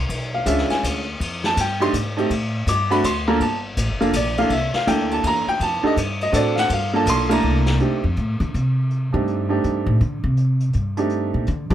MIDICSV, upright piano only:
0, 0, Header, 1, 2, 480
1, 0, Start_track
1, 0, Tempo, 366748
1, 130, Time_signature, 3, 2, 24, 8
1, 15369, End_track
2, 0, Start_track
2, 0, Title_t, "Upright piano"
2, 0, Program_c, 0, 0
2, 449, Note_on_c, 0, 77, 84
2, 595, Note_on_c, 0, 56, 63
2, 600, Note_on_c, 0, 61, 59
2, 603, Note_on_c, 0, 62, 58
2, 609, Note_off_c, 0, 77, 0
2, 614, Note_on_c, 0, 65, 76
2, 615, Note_on_c, 0, 76, 82
2, 915, Note_off_c, 0, 76, 0
2, 921, Note_on_c, 0, 80, 87
2, 1085, Note_off_c, 0, 80, 0
2, 1332, Note_off_c, 0, 56, 0
2, 1334, Note_off_c, 0, 61, 0
2, 1336, Note_off_c, 0, 62, 0
2, 1341, Note_off_c, 0, 65, 0
2, 1908, Note_on_c, 0, 81, 111
2, 2059, Note_off_c, 0, 81, 0
2, 2100, Note_on_c, 0, 79, 91
2, 2358, Note_on_c, 0, 57, 82
2, 2363, Note_on_c, 0, 62, 79
2, 2370, Note_on_c, 0, 67, 94
2, 2371, Note_on_c, 0, 63, 80
2, 2378, Note_off_c, 0, 79, 0
2, 2381, Note_on_c, 0, 84, 104
2, 2476, Note_off_c, 0, 84, 0
2, 2512, Note_off_c, 0, 57, 0
2, 2514, Note_off_c, 0, 62, 0
2, 2518, Note_off_c, 0, 63, 0
2, 2518, Note_off_c, 0, 67, 0
2, 2836, Note_on_c, 0, 57, 75
2, 2845, Note_on_c, 0, 63, 72
2, 2846, Note_on_c, 0, 60, 69
2, 2865, Note_on_c, 0, 67, 85
2, 2990, Note_off_c, 0, 57, 0
2, 2995, Note_off_c, 0, 63, 0
2, 2996, Note_off_c, 0, 60, 0
2, 3005, Note_off_c, 0, 67, 0
2, 3519, Note_on_c, 0, 86, 95
2, 3800, Note_on_c, 0, 57, 81
2, 3803, Note_on_c, 0, 60, 69
2, 3807, Note_off_c, 0, 86, 0
2, 3810, Note_on_c, 0, 62, 71
2, 3812, Note_on_c, 0, 66, 91
2, 3814, Note_on_c, 0, 83, 98
2, 3952, Note_off_c, 0, 57, 0
2, 3954, Note_off_c, 0, 60, 0
2, 3957, Note_off_c, 0, 62, 0
2, 3959, Note_off_c, 0, 66, 0
2, 3971, Note_off_c, 0, 83, 0
2, 3993, Note_on_c, 0, 84, 99
2, 4284, Note_off_c, 0, 84, 0
2, 4287, Note_on_c, 0, 82, 86
2, 4290, Note_on_c, 0, 58, 90
2, 4294, Note_on_c, 0, 62, 77
2, 4301, Note_on_c, 0, 65, 76
2, 4309, Note_on_c, 0, 69, 86
2, 4438, Note_off_c, 0, 58, 0
2, 4440, Note_off_c, 0, 62, 0
2, 4443, Note_off_c, 0, 65, 0
2, 4447, Note_off_c, 0, 69, 0
2, 4448, Note_off_c, 0, 82, 0
2, 4472, Note_on_c, 0, 81, 91
2, 4652, Note_off_c, 0, 81, 0
2, 5243, Note_on_c, 0, 58, 81
2, 5246, Note_on_c, 0, 62, 67
2, 5254, Note_on_c, 0, 65, 71
2, 5259, Note_on_c, 0, 69, 82
2, 5394, Note_off_c, 0, 58, 0
2, 5395, Note_off_c, 0, 62, 0
2, 5399, Note_off_c, 0, 65, 0
2, 5402, Note_off_c, 0, 69, 0
2, 5450, Note_on_c, 0, 74, 82
2, 5732, Note_off_c, 0, 74, 0
2, 5736, Note_on_c, 0, 77, 107
2, 5739, Note_on_c, 0, 58, 68
2, 5748, Note_on_c, 0, 62, 68
2, 5752, Note_on_c, 0, 64, 61
2, 5761, Note_on_c, 0, 69, 74
2, 5882, Note_off_c, 0, 58, 0
2, 5886, Note_off_c, 0, 62, 0
2, 5888, Note_off_c, 0, 64, 0
2, 5892, Note_off_c, 0, 69, 0
2, 5892, Note_off_c, 0, 77, 0
2, 5928, Note_on_c, 0, 76, 81
2, 6211, Note_off_c, 0, 76, 0
2, 6220, Note_on_c, 0, 77, 93
2, 6374, Note_off_c, 0, 77, 0
2, 6375, Note_on_c, 0, 58, 59
2, 6376, Note_on_c, 0, 64, 56
2, 6382, Note_on_c, 0, 62, 61
2, 6383, Note_on_c, 0, 69, 71
2, 6383, Note_on_c, 0, 79, 100
2, 6678, Note_off_c, 0, 79, 0
2, 6708, Note_on_c, 0, 81, 100
2, 6858, Note_off_c, 0, 81, 0
2, 6900, Note_on_c, 0, 82, 105
2, 7101, Note_off_c, 0, 58, 0
2, 7101, Note_off_c, 0, 64, 0
2, 7104, Note_off_c, 0, 62, 0
2, 7104, Note_off_c, 0, 69, 0
2, 7177, Note_off_c, 0, 82, 0
2, 7180, Note_on_c, 0, 79, 107
2, 7334, Note_off_c, 0, 79, 0
2, 7360, Note_on_c, 0, 81, 97
2, 7630, Note_on_c, 0, 62, 81
2, 7635, Note_on_c, 0, 67, 78
2, 7636, Note_on_c, 0, 63, 77
2, 7637, Note_on_c, 0, 69, 89
2, 7647, Note_off_c, 0, 81, 0
2, 7683, Note_on_c, 0, 75, 95
2, 7771, Note_off_c, 0, 75, 0
2, 7787, Note_off_c, 0, 62, 0
2, 7789, Note_off_c, 0, 63, 0
2, 7789, Note_off_c, 0, 67, 0
2, 7790, Note_off_c, 0, 69, 0
2, 8150, Note_on_c, 0, 75, 88
2, 8271, Note_on_c, 0, 60, 78
2, 8276, Note_on_c, 0, 66, 72
2, 8281, Note_on_c, 0, 62, 67
2, 8293, Note_on_c, 0, 69, 86
2, 8299, Note_off_c, 0, 75, 0
2, 8328, Note_on_c, 0, 74, 84
2, 8576, Note_on_c, 0, 77, 82
2, 8597, Note_off_c, 0, 77, 0
2, 8611, Note_off_c, 0, 74, 0
2, 8628, Note_on_c, 0, 78, 121
2, 8760, Note_off_c, 0, 60, 0
2, 8762, Note_off_c, 0, 66, 0
2, 8765, Note_off_c, 0, 62, 0
2, 8770, Note_off_c, 0, 69, 0
2, 8778, Note_off_c, 0, 78, 0
2, 8811, Note_on_c, 0, 77, 84
2, 9076, Note_on_c, 0, 58, 69
2, 9085, Note_on_c, 0, 62, 69
2, 9092, Note_off_c, 0, 77, 0
2, 9097, Note_on_c, 0, 65, 65
2, 9099, Note_on_c, 0, 69, 83
2, 9108, Note_on_c, 0, 81, 96
2, 9258, Note_off_c, 0, 81, 0
2, 9287, Note_on_c, 0, 84, 121
2, 9526, Note_off_c, 0, 58, 0
2, 9530, Note_off_c, 0, 62, 0
2, 9537, Note_off_c, 0, 65, 0
2, 9538, Note_off_c, 0, 69, 0
2, 9547, Note_on_c, 0, 58, 86
2, 9549, Note_on_c, 0, 62, 73
2, 9556, Note_on_c, 0, 64, 73
2, 9562, Note_on_c, 0, 57, 87
2, 9570, Note_off_c, 0, 84, 0
2, 9587, Note_on_c, 0, 82, 95
2, 10099, Note_off_c, 0, 82, 0
2, 10168, Note_off_c, 0, 58, 0
2, 10169, Note_off_c, 0, 62, 0
2, 10173, Note_off_c, 0, 64, 0
2, 10176, Note_off_c, 0, 57, 0
2, 10207, Note_on_c, 0, 57, 55
2, 10208, Note_on_c, 0, 60, 53
2, 10210, Note_on_c, 0, 62, 49
2, 10215, Note_on_c, 0, 63, 50
2, 10222, Note_on_c, 0, 67, 67
2, 10488, Note_off_c, 0, 57, 0
2, 10488, Note_off_c, 0, 60, 0
2, 10489, Note_off_c, 0, 62, 0
2, 10492, Note_off_c, 0, 63, 0
2, 10495, Note_off_c, 0, 67, 0
2, 11942, Note_on_c, 0, 57, 54
2, 11948, Note_on_c, 0, 60, 50
2, 11951, Note_on_c, 0, 67, 62
2, 11955, Note_on_c, 0, 63, 47
2, 11958, Note_on_c, 0, 62, 48
2, 12400, Note_off_c, 0, 57, 0
2, 12403, Note_off_c, 0, 60, 0
2, 12404, Note_off_c, 0, 67, 0
2, 12407, Note_off_c, 0, 63, 0
2, 12408, Note_off_c, 0, 62, 0
2, 12421, Note_on_c, 0, 57, 63
2, 12426, Note_on_c, 0, 60, 54
2, 12432, Note_on_c, 0, 63, 54
2, 12435, Note_on_c, 0, 62, 60
2, 12437, Note_on_c, 0, 67, 73
2, 13046, Note_off_c, 0, 57, 0
2, 13048, Note_off_c, 0, 60, 0
2, 13051, Note_off_c, 0, 63, 0
2, 13053, Note_off_c, 0, 62, 0
2, 13054, Note_off_c, 0, 67, 0
2, 14358, Note_on_c, 0, 57, 61
2, 14366, Note_on_c, 0, 62, 59
2, 14373, Note_on_c, 0, 60, 52
2, 14376, Note_on_c, 0, 63, 54
2, 14377, Note_on_c, 0, 67, 70
2, 14975, Note_off_c, 0, 57, 0
2, 14979, Note_off_c, 0, 62, 0
2, 14983, Note_off_c, 0, 60, 0
2, 14984, Note_off_c, 0, 63, 0
2, 14985, Note_off_c, 0, 67, 0
2, 15313, Note_on_c, 0, 60, 57
2, 15315, Note_on_c, 0, 62, 53
2, 15319, Note_on_c, 0, 57, 61
2, 15323, Note_on_c, 0, 63, 55
2, 15369, Note_off_c, 0, 57, 0
2, 15369, Note_off_c, 0, 60, 0
2, 15369, Note_off_c, 0, 62, 0
2, 15369, Note_off_c, 0, 63, 0
2, 15369, End_track
0, 0, End_of_file